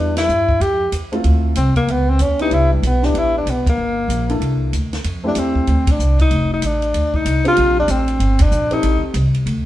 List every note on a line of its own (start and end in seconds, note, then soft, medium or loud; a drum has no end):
0.00 0.28 E2 medium
0.00 0.27 G3 soft
0.00 0.27 B3 soft
0.00 0.17 D4 medium
0.00 0.27 D4 soft
0.00 0.27 E4 soft
0.17 0.62 E4 medium
0.17 snare medium
0.17 ride medium
0.28 0.59 G2 medium
0.28 hi-hat pedal medium
0.49 kick soft
0.60 0.91 F2 medium
0.60 0.93 G4 medium
0.60 ride medium
0.92 1.23 E2 medium
0.92 hi-hat pedal medium
0.92 ride medium
1.12 1.53 A3 medium
1.12 1.54 C4 medium
1.12 1.54 E4 medium
1.12 1.54 F4 medium
1.12 ride soft
1.24 1.55 D2 medium
1.24 ride medium
1.55 1.87 C2 medium
1.55 1.75 C4 medium
1.55 hi-hat pedal soft
1.55 ride medium
1.76 1.92 A#3 medium
1.76 kick soft
1.76 ride soft
1.87 2.18 C#2 medium
1.87 2.11 B3 medium
1.87 ride medium
2.09 2.23 C4 medium
2.19 2.50 D#2 medium
2.19 2.40 C#4 medium
2.19 hi-hat pedal medium
2.19 ride medium
2.39 2.80 B3 medium
2.39 2.81 D4 medium
2.39 2.55 D#4 medium
2.39 2.81 E4 medium
2.39 2.81 G4 medium
2.39 ride soft
2.51 2.82 C2 medium
2.51 2.72 E4 medium
2.51 ride soft
2.72 2.88 G3 soft
2.83 3.13 B1 medium
2.83 3.06 B3 medium
2.83 hi-hat pedal soft
2.83 ride medium
3.02 3.43 B3 medium
3.02 3.44 D4 soft
3.02 3.19 D4 medium
3.02 3.44 E4 medium
3.02 3.44 G4 medium
3.02 snare soft
3.14 3.45 A1 medium
3.14 ride soft
3.18 3.36 E4 medium
3.38 3.52 D4 medium
3.46 3.64 B1 medium
3.46 hi-hat pedal soft
3.46 ride medium
3.50 3.68 B3 medium
3.66 4.39 A#3 medium
3.66 muted upright bass stroke soft
3.66 kick medium
3.66 ride medium
3.77 4.08 G1 medium
4.08 4.39 A#1 medium
4.08 hi-hat pedal medium
4.08 ride medium
4.29 4.70 A#3 medium
4.29 4.70 D4 medium
4.29 4.71 E4 medium
4.29 4.71 A4 medium
4.29 ride soft
4.40 4.71 C2 medium
4.40 ride medium
4.73 5.03 D2 medium
4.73 hi-hat pedal soft
4.73 ride medium
4.93 snare soft
4.93 ride soft
5.04 5.35 F2 medium
5.04 ride medium
5.24 5.65 A3 medium
5.24 5.65 C4 medium
5.24 5.40 D4 medium
5.24 5.65 E4 medium
5.24 5.66 G4 medium
5.35 5.66 E2 medium
5.35 5.93 C4 medium
5.35 hi-hat pedal medium
5.35 ride medium
5.55 kick soft
5.67 5.98 D2 medium
5.67 ride medium
5.87 kick medium
5.87 ride medium
5.92 6.20 D4 medium
5.99 6.30 C2 medium
5.99 hi-hat pedal medium
6.19 6.50 D#4 medium
6.19 kick soft
6.19 ride soft
6.31 6.61 F1 medium
6.31 ride medium
6.53 6.67 D#4 medium
6.62 6.93 A1 medium
6.62 7.17 D4 medium
6.62 hi-hat pedal medium
6.62 ride medium
6.82 ride soft
6.94 7.24 D2 medium
6.94 ride medium
7.14 7.46 D#4 medium
7.14 kick soft
7.25 7.56 C2 medium
7.25 hi-hat pedal medium
7.25 ride medium
7.45 7.86 C4 medium
7.45 7.87 D4 medium
7.45 7.87 F4 medium
7.45 7.76 F4 loud
7.45 7.87 G4 medium
7.45 ride soft
7.57 7.87 A#1 medium
7.57 ride medium
7.79 7.92 D4 medium
7.88 8.19 A1 medium
7.88 8.43 C4 medium
7.88 hi-hat pedal medium
7.88 ride medium
8.08 ride soft
8.19 8.51 G1 medium
8.19 ride medium
8.39 8.74 D4 medium
8.39 kick medium
8.39 ride medium
8.51 8.82 A#1 medium
8.51 hi-hat pedal medium
8.71 9.13 C4 medium
8.71 9.13 D#4 medium
8.71 9.04 D#4 medium
8.71 9.13 G4 medium
8.71 9.13 A4 medium
8.71 ride soft
8.83 9.02 A1 medium
8.83 ride medium
9.02 muted upright bass stroke soft
9.14 9.45 C2 medium
9.14 hi-hat pedal medium
9.14 ride medium
9.34 ride soft
9.46 9.65 D2 medium
9.46 ride medium